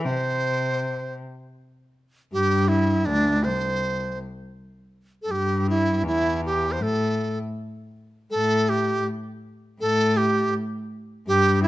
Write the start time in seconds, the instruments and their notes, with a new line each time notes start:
0.04 cello C3, dizi C5
2.33 cello G2, dizi G4
2.65 dizi E4 G4
3.05 cello D2, dizi D4
3.44 cello C2, dizi C5
5.22 dizi A4
5.29 cello G2, dizi G4
5.70 dizi E4
6.03 cello E2, dizi E4
6.46 dizi G4
6.72 dizi C5
6.80 cello A2, dizi A4
8.31 cello A2, dizi A4
8.69 dizi G4
9.81 cello A2, dizi A4
10.17 dizi G4
11.28 cello G2, dizi G4
11.63 dizi E4